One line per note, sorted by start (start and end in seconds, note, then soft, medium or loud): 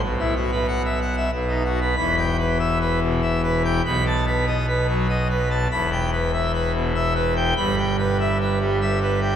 0.03 1.29 B1 medium
0.03 1.29 B2 medium
0.19 0.34 E4 medium
0.36 0.51 F#4 medium
0.52 0.66 B4 medium
0.68 0.82 F#5 medium
0.85 0.99 E5 medium
1.01 1.15 F#5 medium
1.17 1.31 E5 medium
1.32 1.95 B1 medium
1.32 1.95 B2 medium
1.48 1.63 D#4 medium
1.65 1.80 F#4 medium
1.81 1.95 B4 medium
1.96 3.81 E1 medium
1.96 3.81 E2 medium
1.96 2.15 B5 loud
2.18 2.37 G5 medium
2.38 2.57 B4 medium
2.59 2.78 E5 medium
2.81 3.00 B4 medium
3.02 3.20 B2 medium
3.22 3.41 E5 medium
3.43 3.62 B4 medium
3.65 3.82 G5 medium
3.85 5.67 B1 medium
3.85 5.67 B2 medium
3.85 4.04 B5 loud
4.06 4.25 A5 medium
4.27 4.45 B4 medium
4.47 4.66 D#5 medium
4.68 4.87 B4 medium
4.88 5.07 F#3 medium
5.09 5.28 D#5 medium
5.30 5.48 B4 medium
5.50 5.68 A5 medium
5.71 7.53 E1 medium
5.71 7.53 E2 medium
5.71 5.90 B5 loud
5.92 6.10 G5 medium
6.13 6.31 B4 medium
6.33 6.51 E5 medium
6.54 6.72 B4 medium
6.74 6.93 B2 medium
6.95 7.13 E5 medium
7.15 7.34 B4 medium
7.36 7.54 G5 medium
7.57 9.36 G1 medium
7.57 9.36 G2 medium
7.57 7.75 B5 loud
7.78 7.96 G5 medium
7.99 8.17 B4 medium
8.20 8.38 E5 medium
8.41 8.58 B4 medium
8.60 8.78 G3 medium
8.81 8.99 E5 medium
9.02 9.19 B4 medium
9.21 9.36 G5 medium